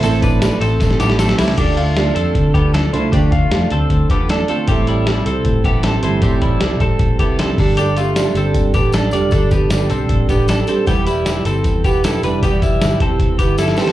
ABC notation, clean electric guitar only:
X:1
M:4/4
L:1/8
Q:1/4=155
K:Am
V:1 name="Clean electric guitar"
[CA] [DB]2 [CA]2 [B,G] [CA] [G,E] | [DG] [A,F]2 [CA]2 [B,G] [DA] [Ec] | [DG] [A,F]2 [CA]2 [B,G] [DA] [CA] | [CG] [G,E]2 [CA]2 [B,G] [CA] [Ec] |
[CG] [G,E]2 [CA]2 [B,G] [CA] [DA] | [DG] [A,F]2 [CA]2 [B,G] [DA] [Fd] | [DA] [B,G]2 [CA]2 [B,G] [DA] [CA] | [B,G] [G,E]2 [CA]2 [B,G] [EA] [DB] |
[B,G] [G,E]2 [CA]2 [B,G] [EA] [CA] |]